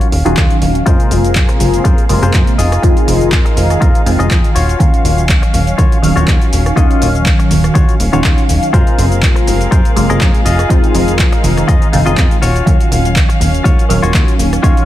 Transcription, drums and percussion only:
0.01 closed hi-hat
0.12 open hi-hat
0.26 closed hi-hat
0.37 kick, clap, closed hi-hat
0.51 closed hi-hat
0.62 open hi-hat
0.75 closed hi-hat
0.86 kick, closed hi-hat, cabasa
1.00 closed hi-hat, cabasa
1.11 open hi-hat, cabasa
1.24 closed hi-hat, cabasa
1.35 kick, clap, closed hi-hat, cabasa
1.49 closed hi-hat, cabasa
1.60 open hi-hat, cabasa
1.74 closed hi-hat, cabasa
1.85 kick, closed hi-hat, cabasa
1.98 closed hi-hat, cabasa
2.09 open hi-hat, cabasa
2.23 closed hi-hat, cabasa
2.34 kick, clap, closed hi-hat, cabasa
2.47 closed hi-hat, cabasa
2.59 open hi-hat, cabasa
2.72 cross-stick, closed hi-hat, cabasa
2.83 kick, closed hi-hat, cabasa
2.97 closed hi-hat, cabasa
3.08 open hi-hat, cabasa
3.21 closed hi-hat, cabasa
3.32 kick, clap, closed hi-hat, cabasa
3.46 closed hi-hat, cabasa
3.57 open hi-hat, cabasa
3.70 cross-stick, closed hi-hat, cabasa
3.82 kick, closed hi-hat, cabasa
3.95 closed hi-hat, cabasa
4.06 open hi-hat, cabasa
4.20 closed hi-hat, cabasa
4.31 kick, clap, closed hi-hat, cabasa
4.44 closed hi-hat, cabasa
4.56 open hi-hat, cabasa
4.69 closed hi-hat, cabasa
4.80 kick, closed hi-hat, cabasa
4.94 closed hi-hat, cabasa
5.05 open hi-hat, cabasa
5.18 closed hi-hat, cabasa
5.29 kick, clap, closed hi-hat, cabasa
5.43 closed hi-hat, cabasa
5.54 open hi-hat, cabasa
5.67 closed hi-hat, cabasa
5.79 kick, closed hi-hat, cabasa
5.92 closed hi-hat, cabasa
6.04 open hi-hat, cabasa
6.17 closed hi-hat, cabasa
6.28 kick, clap, closed hi-hat, cabasa
6.42 closed hi-hat, cabasa
6.53 open hi-hat, cabasa
6.66 cross-stick, closed hi-hat, cabasa
6.77 kick, closed hi-hat, cabasa
6.91 closed hi-hat, cabasa
7.02 open hi-hat, cabasa
7.15 closed hi-hat, cabasa
7.26 kick, clap, closed hi-hat, cabasa
7.40 closed hi-hat, cabasa
7.51 open hi-hat, cabasa
7.64 cross-stick, closed hi-hat, cabasa
7.75 kick, closed hi-hat, cabasa
7.89 closed hi-hat, cabasa
8.00 open hi-hat, cabasa, shaker
8.13 closed hi-hat, cabasa
8.24 kick, clap, closed hi-hat, cabasa
8.38 closed hi-hat, cabasa
8.49 open hi-hat, cabasa
8.63 closed hi-hat, cabasa
8.74 kick, closed hi-hat, cabasa
8.87 closed hi-hat, cabasa
8.98 open hi-hat, cabasa, shaker
9.12 closed hi-hat, cabasa, shaker
9.23 kick, clap, closed hi-hat, cabasa
9.36 closed hi-hat, cabasa
9.47 open hi-hat, cabasa
9.61 closed hi-hat, cabasa, shaker
9.72 kick, closed hi-hat, cabasa
9.85 closed hi-hat, cabasa
9.97 open hi-hat, cabasa
10.10 closed hi-hat, cabasa
10.21 kick, clap, closed hi-hat, cabasa
10.34 closed hi-hat, cabasa
10.46 open hi-hat, cabasa
10.59 cross-stick, closed hi-hat, cabasa, shaker
10.70 kick, closed hi-hat, cabasa
10.84 closed hi-hat, cabasa
10.95 open hi-hat, cabasa, shaker
11.08 closed hi-hat, cabasa
11.19 kick, clap, closed hi-hat, cabasa
11.33 closed hi-hat, cabasa
11.43 open hi-hat, cabasa, shaker
11.57 cross-stick, closed hi-hat, cabasa
11.69 kick, closed hi-hat, cabasa
11.82 closed hi-hat, cabasa, shaker
11.93 open hi-hat, cabasa, shaker
12.07 closed hi-hat, cabasa
12.18 kick, clap, closed hi-hat, cabasa
12.31 closed hi-hat, cabasa
12.42 open hi-hat, cabasa, shaker
12.56 closed hi-hat, cabasa
12.66 kick, closed hi-hat, cabasa, shaker
12.80 closed hi-hat, cabasa
12.91 open hi-hat, cabasa, shaker
13.05 closed hi-hat, cabasa
13.16 kick, clap, closed hi-hat, cabasa
13.30 closed hi-hat, cabasa
13.41 open hi-hat, cabasa, shaker
13.54 closed hi-hat, cabasa, shaker
13.65 kick, closed hi-hat, cabasa
13.78 closed hi-hat, cabasa, shaker
13.90 open hi-hat, cabasa, shaker
14.03 closed hi-hat, cabasa
14.14 kick, clap, closed hi-hat, cabasa
14.28 closed hi-hat, cabasa
14.39 open hi-hat, cabasa, shaker
14.53 cross-stick, closed hi-hat, cabasa
14.64 kick, closed hi-hat, cabasa
14.77 closed hi-hat, cabasa

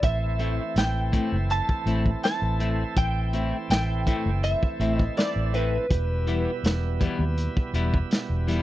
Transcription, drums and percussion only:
0.03 kick, closed hi-hat
0.39 closed hi-hat
0.76 snare, closed hi-hat
1.13 kick, closed hi-hat
1.50 closed hi-hat
1.69 kick
1.87 closed hi-hat
2.06 kick
2.23 snare, closed hi-hat
2.60 closed hi-hat
2.97 kick, closed hi-hat
3.33 closed hi-hat
3.70 snare, closed hi-hat
4.07 kick, closed hi-hat
4.43 closed hi-hat
4.63 kick
4.81 closed hi-hat
4.99 kick
5.17 snare, closed hi-hat
5.54 closed hi-hat
5.91 kick, closed hi-hat
6.27 closed hi-hat
6.64 snare, closed hi-hat
7.01 kick, closed hi-hat
7.38 closed hi-hat
7.57 kick
7.74 closed hi-hat
7.94 kick
8.11 snare, closed hi-hat
8.48 snare, closed hi-hat

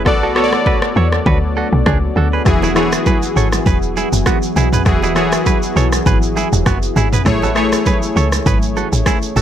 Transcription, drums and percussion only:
0.06 kick, cross-stick
0.36 cross-stick
0.53 cross-stick
0.66 kick
0.82 cross-stick
1.12 cross-stick
1.26 kick
1.86 kick, cross-stick
2.46 kick, cross-stick, low conga, shaker
2.62 low bongo, shaker
2.76 cross-stick, shaker
2.92 cross-stick, shaker
3.06 kick, high bongo, low conga, shaker
3.22 low bongo, shaker
3.37 shaker
3.52 cross-stick, high bongo, shaker
3.66 kick, low conga, shaker
3.82 shaker
3.97 high bongo, shaker
4.13 low bongo, shaker
4.26 kick, cross-stick, high bongo, shaker
4.42 shaker
4.56 low bongo, shaker
4.73 mid tom, shaker
4.86 kick, cross-stick, low conga, shaker
5.03 low bongo, shaker
5.16 cross-stick, shaker
5.32 cross-stick, shaker
5.46 kick, high bongo, low conga, shaker
5.62 low bongo, shaker
5.77 shaker
5.93 cross-stick, high bongo, shaker
6.06 kick, low conga, shaker
6.22 shaker
6.37 high bongo, shaker
6.53 low bongo, shaker
6.66 kick, cross-stick, high bongo, shaker
6.83 shaker
6.96 low bongo, shaker
7.13 mid tom, shaker
7.26 kick, cross-stick, low conga, shaker
7.42 low bongo, shaker
7.56 cross-stick, shaker
7.72 cross-stick, shaker
7.86 kick, high bongo, low conga, shaker
8.02 low bongo, shaker
8.17 shaker
8.32 cross-stick, high bongo, shaker
8.46 kick, low conga, shaker
8.62 shaker
8.77 high bongo, shaker
8.93 low bongo, shaker
9.06 kick, cross-stick, high bongo, shaker
9.22 shaker
9.36 low bongo, shaker

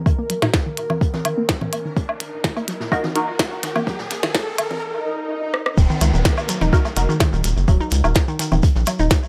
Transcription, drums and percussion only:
0.06 kick, closed hi-hat, low woodblock
0.30 closed hi-hat
0.42 snare, low woodblock
0.54 kick, snare, closed hi-hat
0.77 closed hi-hat
0.90 low conga, low woodblock
1.01 kick, closed hi-hat
1.14 snare, low conga
1.25 closed hi-hat, low woodblock
1.49 kick, snare, closed hi-hat
1.61 low conga
1.73 closed hi-hat, low woodblock
1.96 kick, closed hi-hat
2.09 low woodblock
2.20 closed hi-hat
2.44 kick, snare, closed hi-hat
2.56 closed hi-hat, low woodblock
2.68 snare, closed hi-hat
2.81 snare
2.92 kick, closed hi-hat, low woodblock
3.04 snare, low conga
3.15 closed hi-hat
3.39 kick, snare, closed hi-hat, low woodblock
3.52 closed hi-hat
3.63 snare, closed hi-hat
3.76 closed hi-hat, low conga, low woodblock
3.87 kick, snare, closed hi-hat
3.99 snare
4.10 snare, closed hi-hat
4.23 snare, low woodblock
4.35 kick, snare, closed hi-hat
4.58 closed hi-hat, low woodblock
4.71 low conga
5.54 cross-stick
5.66 cross-stick
5.78 kick, closed hi-hat, shekere
5.90 shekere
6.01 closed hi-hat, low woodblock, shekere
6.14 shekere
6.25 kick, snare, closed hi-hat, shekere
6.37 closed hi-hat, low woodblock, shekere
6.48 snare, closed hi-hat, shekere
6.61 snare, low conga, shekere
6.73 kick, closed hi-hat, shekere
6.85 snare, low woodblock, shekere
6.96 closed hi-hat, shekere
7.10 shekere
7.20 kick, snare, closed hi-hat, low woodblock, shekere
7.33 closed hi-hat, shekere
7.44 closed hi-hat, shekere
7.57 shekere
7.68 kick, closed hi-hat, low woodblock, shekere
7.81 shekere
7.91 closed hi-hat, shekere
8.04 low woodblock, shekere
8.14 kick, snare, closed hi-hat, shekere
8.28 shekere
8.39 closed hi-hat, shekere
8.52 low conga, low woodblock, shekere
8.63 kick, closed hi-hat, shekere
8.76 snare, shekere
8.86 closed hi-hat, low woodblock, shekere
8.99 shekere
9.10 kick, snare, closed hi-hat, shekere
9.23 shekere

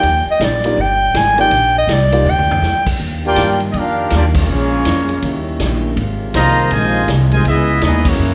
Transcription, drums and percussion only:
0.03 ride
0.41 snare, hi-hat pedal, ride
0.64 ride
1.14 snare, hi-hat pedal, ride
1.38 ride
1.51 ride
1.89 snare, hi-hat pedal, ride
2.12 ride
2.26 floor tom
2.39 floor tom
2.51 floor tom
2.63 snare, hi-hat pedal
2.86 kick, crash
3.36 snare, hi-hat pedal, ride
3.60 ride
3.74 ride
4.10 snare, hi-hat pedal, ride
4.34 kick, crash
4.85 snare, hi-hat pedal, ride
5.09 ride
5.22 ride
5.60 snare, hi-hat pedal, ride
5.97 ride
6.34 snare, hi-hat pedal, ride
6.71 ride
7.08 snare, hi-hat pedal, ride
7.31 ride
7.45 ride
7.81 snare, hi-hat pedal, ride
8.05 kick, crash

